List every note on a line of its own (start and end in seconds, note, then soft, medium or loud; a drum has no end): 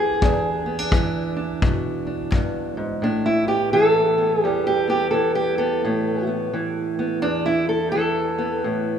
0.00 0.21 E2 medium
0.00 0.25 E3 medium
0.00 0.20 C4 soft
0.00 3.02 G#4 medium
0.22 2.33 E2 medium
0.22 0.65 D4 soft
0.22 kick medium
0.66 0.79 B3 soft
0.79 1.35 D4 soft
0.91 2.99 E3 medium
0.91 kick medium
1.36 2.05 D4 soft
1.62 3.00 B2 medium
1.62 kick medium
2.07 3.00 D4 soft
2.32 2.77 G2 medium
2.32 kick medium
2.77 3.03 G#2 medium
3.02 4.43 A2 medium
3.02 3.26 D4 medium
3.26 3.48 E4 medium
3.47 4.18 B3 soft
3.47 3.72 G4 medium
3.73 5.13 E3 medium
3.73 4.43 A4 medium
4.18 4.87 B3 soft
4.43 5.84 E2 medium
4.43 8.67 G3 soft
4.43 4.66 G4 medium
4.67 4.89 G4 medium
4.87 5.59 B3 soft
4.87 5.10 G4 medium
5.11 6.53 E3 medium
5.11 5.35 A4 medium
5.35 5.58 G4 medium
5.58 5.84 B3 soft
5.58 6.29 A4 medium
5.85 7.24 A2 medium
5.85 6.27 B3 soft
6.27 6.98 B3 soft
6.53 7.95 E3 medium
6.99 7.22 B3 medium
7.22 8.64 E2 medium
7.22 7.46 D4 loud
7.46 7.68 E4 medium
7.69 7.90 A4 medium
7.92 8.99 E3 medium
7.92 8.63 A4 medium
8.38 8.99 B3 soft
8.64 8.99 A2 medium